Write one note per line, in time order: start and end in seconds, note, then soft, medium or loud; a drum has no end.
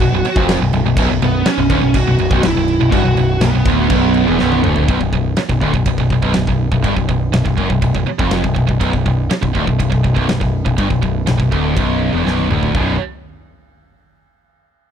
0.00 0.11 B0 medium
0.00 0.11 B1 medium
0.00 0.45 F#4 medium
0.12 0.23 B0 medium
0.12 0.23 B1 medium
0.24 muted distorted electric guitar stroke medium
0.24 muted picked electric bass stroke soft
0.24 crash medium
0.36 0.59 F1 medium
0.36 0.60 F2 loud
0.36 kick loud
0.49 snare loud
0.49 crash medium
0.60 0.71 B0 medium
0.60 0.73 B1 medium
0.72 0.83 B0 medium
0.72 0.84 B1 medium
0.72 crash medium
0.83 0.95 B0 medium
0.83 0.97 B1 medium
0.97 1.08 B0 loud
0.97 1.09 B1 loud
0.97 kick loud
0.97 crash medium
1.08 1.19 B0 medium
1.08 1.21 B1 medium
1.20 1.43 B0 medium
1.20 1.41 B1 medium
1.20 1.45 B3 medium
1.20 crash medium
1.45 1.69 C#4 medium
1.45 muted picked electric bass stroke soft
1.45 muted distorted electric guitar stroke medium
1.45 snare loud
1.45 crash medium
1.58 1.69 B0 medium
1.58 1.70 B1 medium
1.70 1.82 D1 loud
1.70 1.81 D2 loud
1.70 1.96 C#4 medium
1.70 kick loud
1.70 crash medium
1.82 1.94 B0 medium
1.82 1.94 B1 medium
1.94 2.05 B0 medium
1.94 2.07 B1 medium
1.94 2.41 F#4 loud
1.94 kick loud
1.94 crash medium
2.06 2.17 B0 medium
2.06 2.18 B1 medium
2.18 2.30 B0 medium
2.18 2.30 B1 medium
2.18 crash medium
2.31 2.42 B0 medium
2.31 2.42 B1 loud
2.31 kick loud
2.43 2.55 B0 medium
2.43 2.53 B1 medium
2.43 2.90 E4 loud
2.43 snare loud
2.43 crash medium
2.55 2.78 B0 medium
2.55 2.75 B1 medium
2.68 crash medium
2.80 2.92 B0 medium
2.80 2.90 B1 medium
2.91 3.04 G1 loud
2.91 3.03 G2 loud
2.91 3.42 F#4 loud
2.91 kick loud
2.91 crash medium
3.03 3.17 B0 medium
3.03 3.14 B1 medium
3.15 3.40 B0 medium
3.15 3.35 B1 medium
3.15 crash medium
3.41 3.53 B0 medium
3.41 3.52 B1 medium
3.41 4.59 B3 medium
3.41 snare loud
3.41 crash medium
3.53 3.65 B0 medium
3.53 3.65 B1 medium
3.65 3.88 D1 medium
3.65 3.89 D2 loud
3.65 kick loud
3.65 crash medium
3.90 4.24 B0 medium
3.90 4.25 B1 loud
3.90 kick loud
3.90 crash medium
4.14 crash medium
4.25 4.39 E1 loud
4.25 4.37 E2 loud
4.39 4.63 B0 medium
4.39 4.63 B1 loud
4.39 snare medium
4.52 high tom medium
4.63 4.87 D1 medium
4.63 4.87 D2 medium
4.63 mid tom medium
4.76 floor tom medium
4.87 4.99 B0 medium
4.87 4.99 B1 loud
4.87 kick loud
4.87 ride bell medium
5.00 5.12 B0 medium
5.00 5.12 B1 medium
5.00 kick medium
5.13 5.35 B0 medium
5.13 5.32 B1 medium
5.13 kick medium
5.37 muted distorted electric guitar stroke medium
5.37 muted picked electric bass stroke soft
5.37 snare loud
5.37 ride bell medium
5.49 5.61 B0 medium
5.49 5.62 B1 medium
5.49 kick loud
5.61 5.73 D1 medium
5.61 5.73 D2 loud
5.61 kick medium
5.74 5.85 B0 medium
5.74 5.86 B1 medium
5.74 kick medium
5.86 5.97 B0 medium
5.86 5.97 B1 medium
5.86 kick medium
5.86 ride bell medium
5.98 6.10 B0 medium
5.98 6.10 B1 medium
5.98 kick medium
6.10 6.22 B0 medium
6.10 6.23 B1 medium
6.10 kick medium
6.22 6.34 B0 medium
6.22 6.34 B1 loud
6.22 kick medium
6.34 6.47 B0 medium
6.34 6.47 B1 medium
6.34 snare loud
6.34 ride bell medium
6.47 6.70 B0 medium
6.47 6.67 B1 medium
6.47 kick medium
6.72 6.83 B0 medium
6.72 6.84 B1 medium
6.72 kick medium
6.84 6.95 G1 medium
6.84 6.96 G2 loud
6.84 kick medium
6.84 ride bell medium
6.96 7.08 B0 medium
6.96 7.09 B1 medium
6.96 kick medium
7.09 7.32 B0 medium
7.09 7.29 B1 medium
7.09 kick medium
7.33 7.44 B0 medium
7.33 7.46 B1 medium
7.33 snare loud
7.33 ride bell medium
7.46 7.57 B0 medium
7.46 7.58 B1 medium
7.46 kick medium
7.58 7.69 F#1 medium
7.58 7.70 F#2 loud
7.58 kick medium
7.70 7.81 B0 medium
7.70 7.83 B1 medium
7.70 kick medium
7.82 7.93 B0 medium
7.82 7.95 B1 medium
7.82 kick loud
7.82 ride bell medium
7.95 8.06 B0 medium
7.95 8.07 B1 medium
7.95 kick medium
8.07 muted picked electric bass stroke soft
8.07 muted distorted electric guitar stroke medium
8.19 8.42 F1 loud
8.19 8.44 F2 medium
8.19 kick loud
8.31 snare loud
8.31 ride bell medium
8.44 8.55 B0 medium
8.44 8.57 B1 medium
8.44 kick medium
8.56 8.68 B0 medium
8.56 8.69 B1 medium
8.56 kick medium
8.69 8.80 B0 medium
8.69 8.80 B1 medium
8.69 kick medium
8.81 8.92 B0 medium
8.81 8.92 B1 loud
8.81 kick medium
8.81 ride bell medium
8.93 9.04 B0 medium
8.93 9.04 B1 medium
8.93 kick medium
9.06 9.28 B0 medium
9.06 9.25 B1 medium
9.06 kick medium
9.31 muted picked electric bass stroke soft
9.31 muted distorted electric guitar stroke medium
9.31 snare loud
9.31 ride bell medium
9.42 9.54 B0 medium
9.42 9.54 B1 medium
9.42 kick medium
9.55 9.66 D1 medium
9.55 9.67 D2 medium
9.55 kick medium
9.67 9.79 B0 medium
9.67 9.80 B1 medium
9.67 kick medium
9.80 9.91 B0 medium
9.80 9.92 B1 medium
9.80 kick medium
9.80 ride bell medium
9.92 10.03 B0 medium
9.92 10.04 B1 medium
9.92 kick medium
10.04 10.15 B0 medium
10.04 10.16 B1 medium
10.04 kick medium
10.16 10.28 B0 loud
10.16 10.28 B1 medium
10.16 kick medium
10.29 10.41 B0 medium
10.29 10.41 B1 medium
10.29 snare loud
10.29 ride bell medium
10.41 10.64 B0 medium
10.41 10.61 B1 medium
10.41 kick medium
10.66 10.77 B0 medium
10.66 10.78 B1 medium
10.66 kick medium
10.78 10.89 G1 medium
10.78 10.89 G2 medium
10.78 kick medium
10.78 ride bell medium
10.90 11.01 B0 medium
10.90 11.02 B1 medium
10.90 kick medium
11.03 11.26 B0 medium
11.03 11.22 B1 medium
11.03 kick medium
11.27 11.39 B0 medium
11.27 11.40 B1 medium
11.27 snare loud
11.27 ride bell medium
11.40 11.51 B0 medium
11.40 11.52 B1 medium
11.40 kick medium
11.52 11.75 D1 medium
11.52 11.76 D2 loud
11.52 kick medium
11.77 12.11 B0 medium
11.77 12.13 B1 medium
11.77 kick loud
11.77 ride bell medium
12.13 12.25 E1 medium
12.13 12.24 E2 medium
12.25 12.48 B0 medium
12.25 12.49 B1 medium
12.25 snare medium
12.39 high tom medium
12.50 12.73 D1 medium
12.50 12.73 D2 medium
12.50 mid tom medium
12.63 floor tom medium
12.74 12.98 B0 medium
12.74 12.94 B1 medium
12.74 12.95 F#2 medium
12.74 12.95 B2 medium
12.74 kick loud
12.74 floor tom medium